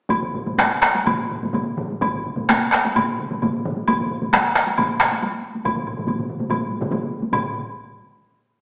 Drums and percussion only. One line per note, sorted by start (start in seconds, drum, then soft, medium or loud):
0.09 taiko medium
0.09 taiko low-mid medium
0.09 taiko mid medium
0.09 taiko high medium
0.09 high woodblock medium
0.22 taiko low-mid medium
0.22 taiko mid medium
0.34 taiko low-mid medium
0.34 taiko mid medium
0.46 taiko low-mid medium
0.46 taiko mid medium
0.46 taiko high medium
0.58 taiko rim medium
0.58 taiko high medium
0.58 high woodblock soft
0.82 taiko rim medium
0.95 taiko high medium
1.06 taiko low-mid medium
1.06 taiko mid medium
1.06 taiko high medium
1.06 high woodblock medium
1.30 taiko low-mid medium
1.30 taiko mid medium
1.42 taiko low-mid medium
1.42 taiko mid medium
1.42 taiko high medium
1.53 taiko low-mid medium
1.53 taiko mid medium
1.53 taiko high medium
1.53 high woodblock soft
1.77 taiko low-mid medium
1.77 taiko mid medium
1.90 taiko high medium
2.01 taiko medium
2.01 taiko low-mid medium
2.01 taiko mid medium
2.01 taiko high medium
2.01 high woodblock medium
2.13 taiko low-mid medium
2.13 taiko mid medium
2.25 taiko low-mid medium
2.25 taiko mid medium
2.37 taiko low-mid medium
2.37 taiko mid medium
2.37 taiko high medium
2.49 taiko rim medium
2.49 taiko high medium
2.49 high woodblock soft
2.72 taiko rim medium
2.85 taiko high medium
2.95 taiko low-mid medium
2.95 taiko mid medium
2.95 taiko high medium
2.95 high woodblock medium
3.19 taiko low-mid medium
3.19 taiko mid medium
3.31 taiko low-mid medium
3.31 taiko mid medium
3.31 taiko high soft
3.42 taiko low-mid medium
3.42 taiko mid medium
3.42 taiko high medium
3.42 high woodblock soft
3.65 taiko low-mid medium
3.65 taiko mid medium
3.77 taiko high soft
3.88 taiko medium
3.88 taiko low-mid medium
3.88 taiko mid medium
3.88 taiko high medium
3.88 high woodblock medium
4.00 taiko low-mid medium
4.00 taiko mid medium
4.11 taiko low-mid medium
4.11 taiko mid medium
4.22 taiko low-mid medium
4.22 taiko mid medium
4.22 taiko high soft
4.33 taiko rim medium
4.33 taiko high medium
4.33 high woodblock soft
4.56 taiko rim medium
4.67 taiko high soft
4.78 taiko low-mid loud
4.78 taiko mid medium
4.78 taiko high medium
4.78 high woodblock medium
5.00 taiko rim medium
5.12 taiko high soft
5.22 taiko high medium
5.22 high woodblock soft
5.55 taiko high soft
5.65 taiko medium
5.65 taiko low-mid medium
5.65 taiko mid medium
5.65 taiko high medium
5.65 high woodblock medium
5.76 taiko low-mid medium
5.76 taiko mid medium
5.87 taiko low-mid medium
5.87 taiko mid medium
5.87 high woodblock soft
5.97 taiko low-mid medium
5.97 taiko mid medium
5.97 taiko high soft
6.08 taiko low-mid medium
6.08 taiko mid medium
6.08 taiko high medium
6.08 high woodblock soft
6.19 taiko low-mid medium
6.19 taiko mid medium
6.29 taiko low-mid medium
6.29 taiko mid medium
6.40 taiko low-mid medium
6.40 taiko mid medium
6.40 taiko high soft
6.50 taiko low-mid medium
6.50 taiko mid medium
6.50 taiko high medium
6.50 high woodblock soft
6.71 taiko high soft
6.81 taiko low-mid medium
6.81 taiko mid medium
6.81 taiko high soft
6.91 taiko low-mid medium
6.91 taiko mid medium
6.91 taiko high medium
6.91 high woodblock soft
7.22 taiko high soft
7.32 taiko medium
7.32 taiko low-mid medium
7.32 taiko mid medium
7.32 taiko high medium
7.32 high woodblock medium